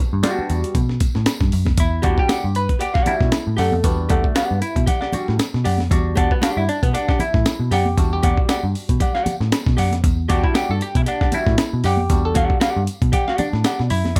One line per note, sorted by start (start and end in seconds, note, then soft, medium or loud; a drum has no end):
0.13 0.22 G2 loud
0.23 0.78 G3 medium
0.23 0.78 B3 medium
0.23 0.78 D4 medium
0.23 0.31 F4 medium
0.23 snare loud
0.23 closed hi-hat loud
0.23 tambourine medium
0.23 high conga medium
0.30 0.81 F#4 loud
0.39 muted picked electric bass stroke soft
0.50 0.62 E2 loud
0.50 closed hi-hat medium
0.50 tambourine medium
0.64 closed hi-hat medium
0.75 0.98 B2 medium
0.75 kick medium
0.75 closed hi-hat medium
0.75 tambourine soft
0.75 low conga medium
0.89 snare soft
1.00 kick loud
1.00 closed hi-hat medium
1.00 tambourine medium
1.00 muted conga medium
1.15 1.25 A2 medium
1.15 snare soft
1.26 snare loud
1.26 closed hi-hat medium
1.26 tambourine loud
1.26 high conga medium
1.40 1.51 G2 medium
1.40 kick medium
1.40 snare soft
1.52 1.67 F#2 medium
1.52 open hi-hat medium
1.52 tambourine medium
1.65 1.77 F2 medium
1.65 kick medium
1.65 snare soft
1.65 high conga medium
1.77 2.01 E2 medium
1.77 2.20 E4 medium
1.77 kick loud
1.77 closed hi-hat loud
1.77 tambourine medium
2.02 2.17 E2 loud
2.02 2.39 G3 medium
2.02 2.39 D4 medium
2.02 2.39 F#4 medium
2.02 2.18 G4 medium
2.02 2.19 D5 medium
2.02 2.19 F#5 medium
2.02 kick medium
2.02 closed hi-hat medium
2.02 muted conga medium
2.18 2.57 G4 medium
2.18 kick medium
2.29 2.44 G4 medium
2.29 2.45 D5 medium
2.29 2.45 F#5 medium
2.29 muted picked electric bass stroke soft
2.29 snare loud
2.29 closed hi-hat loud
2.29 tambourine loud
2.29 high conga medium
2.44 2.67 G2 medium
2.55 2.82 B4 loud
2.55 closed hi-hat medium
2.55 tambourine medium
2.69 kick medium
2.69 closed hi-hat medium
2.79 2.92 G4 medium
2.79 2.93 G4 medium
2.79 2.92 D5 medium
2.79 2.93 F#5 medium
2.79 closed hi-hat medium
2.79 tambourine soft
2.94 3.15 G4 medium
2.94 3.15 D5 medium
2.94 3.14 F#5 medium
2.94 kick loud
2.94 snare soft
3.06 3.30 G3 soft
3.06 3.30 D4 soft
3.06 3.60 E4 loud
3.06 3.30 F#4 medium
3.06 muted picked electric bass stroke medium
3.06 closed hi-hat medium
3.06 tambourine medium
3.06 muted conga medium
3.06 low conga medium
3.21 3.31 B2 medium
3.21 kick loud
3.21 snare soft
3.32 snare loud
3.32 closed hi-hat medium
3.32 tambourine loud
3.32 high conga medium
3.47 3.57 A2 medium
3.57 3.71 F#2 medium
3.57 3.85 A3 medium
3.57 3.73 G4 medium
3.57 3.73 D5 medium
3.57 3.74 F#5 medium
3.57 snare soft
3.57 open hi-hat medium
3.57 tambourine medium
3.72 3.83 F2 loud
3.72 high conga medium
3.83 4.07 E2 loud
3.83 4.58 G3 medium
3.83 4.11 B3 medium
3.83 4.58 D4 medium
3.83 4.58 F#4 medium
3.83 kick medium
3.83 closed hi-hat loud
3.83 tambourine medium
3.83 muted conga soft
4.09 4.23 E2 loud
4.09 4.37 A3 medium
4.09 4.25 G4 medium
4.09 4.25 D5 medium
4.09 4.25 F#5 medium
4.09 kick loud
4.09 closed hi-hat medium
4.09 muted conga medium
4.24 kick medium
4.35 4.60 B3 medium
4.35 4.56 G4 medium
4.35 4.57 D5 medium
4.35 4.57 F#5 medium
4.35 snare loud
4.35 closed hi-hat loud
4.35 tambourine medium
4.35 high conga medium
4.51 4.61 G2 medium
4.62 4.86 E4 medium
4.62 closed hi-hat medium
4.62 tambourine medium
4.76 4.86 B2 medium
4.76 kick medium
4.76 closed hi-hat soft
4.86 4.99 G4 medium
4.86 4.99 D5 medium
4.86 5.00 F#5 medium
4.86 kick medium
4.86 closed hi-hat medium
4.86 tambourine soft
4.86 low conga medium
5.01 5.14 G4 medium
5.01 5.14 D5 medium
5.01 5.14 F#5 medium
5.01 snare soft
5.13 5.36 G3 medium
5.13 5.37 D4 soft
5.13 5.37 F#4 medium
5.13 muted picked electric bass stroke soft
5.13 closed hi-hat medium
5.13 tambourine medium
5.13 muted conga medium
5.13 low conga medium
5.28 5.39 A2 medium
5.28 snare soft
5.38 snare loud
5.38 closed hi-hat medium
5.38 tambourine loud
5.38 high conga medium
5.54 5.64 B2 medium
5.54 snare soft
5.64 5.80 F#2 medium
5.64 5.80 G4 medium
5.64 5.80 D5 medium
5.64 5.80 F#5 medium
5.64 open hi-hat medium
5.64 tambourine medium
5.78 5.90 F2 loud
5.78 snare soft
5.78 high conga medium
5.90 6.14 E2 loud
5.90 7.93 G3 medium
5.90 6.16 D4 medium
5.90 7.94 F#4 medium
5.90 kick loud
5.90 closed hi-hat loud
5.90 tambourine medium
5.90 muted conga soft
6.16 6.30 E2 loud
6.16 6.32 D4 medium
6.16 6.31 G4 medium
6.16 6.32 D5 medium
6.16 6.32 F#5 medium
6.16 kick loud
6.16 closed hi-hat medium
6.16 muted conga medium
6.31 6.42 B3 medium
6.31 kick medium
6.41 6.58 D4 medium
6.41 6.63 G4 medium
6.41 6.63 D5 medium
6.41 6.63 F#5 medium
6.41 snare loud
6.41 closed hi-hat loud
6.41 tambourine medium
6.41 high conga medium
6.57 6.67 G2 medium
6.57 6.69 E4 medium
6.69 6.82 D4 medium
6.69 closed hi-hat medium
6.69 tambourine soft
6.83 6.93 B2 medium
6.83 6.95 B3 medium
6.83 kick medium
6.83 closed hi-hat soft
6.93 7.18 D4 medium
6.93 7.06 G4 medium
6.93 7.06 D5 medium
6.93 7.06 F#5 medium
6.93 closed hi-hat medium
6.93 tambourine soft
7.08 7.21 G4 medium
7.08 7.21 D5 medium
7.08 7.21 F#5 medium
7.08 kick loud
7.08 snare soft
7.19 7.73 E4 loud
7.19 muted picked electric bass stroke medium
7.19 closed hi-hat medium
7.19 tambourine medium
7.19 muted conga medium
7.19 low conga medium
7.34 7.44 A2 medium
7.34 kick loud
7.34 snare soft
7.45 snare loud
7.45 closed hi-hat medium
7.45 tambourine loud
7.45 high conga medium
7.60 7.70 B2 medium
7.71 7.85 F#2 medium
7.71 7.87 G4 loud
7.71 8.12 G4 loud
7.71 7.87 D5 medium
7.71 7.87 F#5 loud
7.71 snare soft
7.71 open hi-hat medium
7.71 tambourine medium
7.85 7.96 F2 loud
7.85 high conga medium
7.97 8.20 E2 loud
7.97 10.00 G3 medium
7.97 10.00 D4 medium
7.97 10.00 F#4 medium
7.97 kick loud
7.97 closed hi-hat loud
7.97 tambourine medium
7.97 muted conga soft
8.13 8.60 G4 loud
8.23 8.36 E2 medium
8.23 8.38 G4 medium
8.23 8.38 D5 medium
8.23 8.39 F#5 medium
8.23 kick medium
8.23 closed hi-hat medium
8.23 muted conga medium
8.37 kick medium
8.49 8.64 G4 medium
8.49 8.64 D5 medium
8.49 8.65 F#5 medium
8.49 snare loud
8.49 closed hi-hat loud
8.49 tambourine medium
8.49 high conga medium
8.63 8.74 G2 medium
8.75 open hi-hat medium
8.75 tambourine medium
8.89 8.99 B2 medium
8.89 kick medium
8.89 closed hi-hat medium
9.00 9.12 G4 medium
9.00 9.13 D5 medium
9.00 9.13 F#5 medium
9.00 kick medium
9.00 closed hi-hat medium
9.00 tambourine soft
9.00 low conga medium
9.15 9.35 G4 medium
9.15 9.34 D5 medium
9.15 9.34 F#5 medium
9.15 snare soft
9.26 muted picked electric bass stroke medium
9.26 closed hi-hat medium
9.26 tambourine medium
9.26 muted conga medium
9.26 low conga medium
9.41 9.51 A2 medium
9.41 snare soft
9.52 snare loud
9.52 closed hi-hat medium
9.52 tambourine loud
9.52 high conga medium
9.66 9.77 B2 medium
9.66 kick loud
9.66 snare soft
9.77 9.93 F#2 medium
9.77 9.92 G4 medium
9.77 9.93 D5 medium
9.77 9.94 F#5 medium
9.77 open hi-hat medium
9.77 tambourine medium
9.92 10.03 F2 medium
9.92 snare soft
9.92 closed hi-hat medium
9.92 high conga medium
10.04 10.27 E2 loud
10.04 kick loud
10.04 closed hi-hat loud
10.04 tambourine medium
10.28 10.43 E2 medium
10.28 11.03 G3 medium
10.28 11.03 D4 medium
10.28 11.03 F#4 medium
10.28 10.44 G4 medium
10.28 10.44 G4 loud
10.28 10.45 D5 medium
10.28 10.45 F#5 medium
10.28 kick medium
10.28 closed hi-hat medium
10.28 tambourine soft
10.28 muted conga medium
10.44 10.55 E4 loud
10.44 kick medium
10.54 10.70 G4 medium
10.54 10.70 G4 loud
10.54 10.70 D5 medium
10.54 10.71 F#5 loud
10.54 snare loud
10.54 closed hi-hat loud
10.54 tambourine loud
10.54 high conga medium
10.70 10.80 G2 medium
10.70 10.82 A4 medium
10.81 10.96 G4 medium
10.81 closed hi-hat medium
10.81 tambourine medium
10.95 11.06 B2 medium
10.95 11.01 E4 medium
10.95 kick medium
10.95 closed hi-hat medium
11.06 11.33 D4 medium
11.06 11.19 G4 medium
11.06 11.19 D5 medium
11.06 11.19 F#5 medium
11.06 closed hi-hat medium
11.06 tambourine soft
11.21 11.34 G4 medium
11.21 11.34 D5 medium
11.21 11.33 F#5 medium
11.21 kick loud
11.21 snare soft
11.32 11.56 G3 soft
11.32 11.56 D4 soft
11.32 11.87 E4 loud
11.32 11.57 F#4 medium
11.32 muted picked electric bass stroke medium
11.32 closed hi-hat medium
11.32 tambourine medium
11.32 muted conga medium
11.32 low conga medium
11.47 11.57 A2 medium
11.47 kick medium
11.47 snare soft
11.58 snare loud
11.58 closed hi-hat medium
11.58 tambourine loud
11.58 high conga medium
11.73 11.83 B2 medium
11.84 11.99 F#2 medium
11.84 11.99 G4 medium
11.84 12.26 G4 loud
11.84 12.00 D5 medium
11.84 12.00 F#5 medium
11.84 snare soft
11.84 open hi-hat medium
11.84 tambourine medium
11.97 12.09 F2 medium
11.97 high conga medium
12.10 12.33 E2 loud
12.10 12.83 G3 medium
12.10 12.84 D4 medium
12.10 12.84 F#4 medium
12.10 kick loud
12.10 closed hi-hat loud
12.10 tambourine medium
12.25 12.73 A4 medium
12.35 12.49 E2 loud
12.35 12.56 G4 loud
12.35 12.56 D5 loud
12.35 12.57 F#5 loud
12.35 kick loud
12.35 closed hi-hat medium
12.35 muted conga medium
12.50 kick medium
12.60 12.82 G4 medium
12.60 12.82 D5 loud
12.60 12.82 F#5 loud
12.60 snare loud
12.60 closed hi-hat loud
12.60 tambourine medium
12.60 high conga medium
12.77 12.87 G2 medium
12.87 closed hi-hat medium
12.87 tambourine medium
13.02 13.12 B2 medium
13.02 kick medium
13.02 closed hi-hat medium
13.12 13.25 G4 medium
13.12 13.37 G4 medium
13.12 13.25 D5 medium
13.12 13.25 F#5 medium
13.12 kick medium
13.12 closed hi-hat medium
13.12 tambourine soft
13.12 low conga medium
13.28 13.48 G4 medium
13.28 13.48 D5 medium
13.28 13.47 F#5 medium
13.28 snare soft
13.38 13.92 D4 medium
13.38 muted picked electric bass stroke medium
13.38 closed hi-hat medium
13.38 tambourine medium
13.38 muted conga medium
13.38 low conga medium
13.53 13.64 A2 medium
13.53 snare soft
13.64 13.80 G4 medium
13.64 13.80 D5 medium
13.64 13.80 F#5 medium
13.64 snare loud
13.64 closed hi-hat medium
13.64 tambourine loud
13.64 high conga medium
13.79 13.90 B2 medium
13.79 snare soft
13.90 14.05 F#2 medium
13.90 14.20 E4 medium
13.90 open hi-hat medium
13.90 tambourine medium
14.05 14.15 F2 loud
14.05 snare soft
14.05 high conga medium
14.16 14.20 E2 loud
14.16 14.20 G3 medium
14.16 14.20 D4 medium
14.16 kick loud
14.16 closed hi-hat loud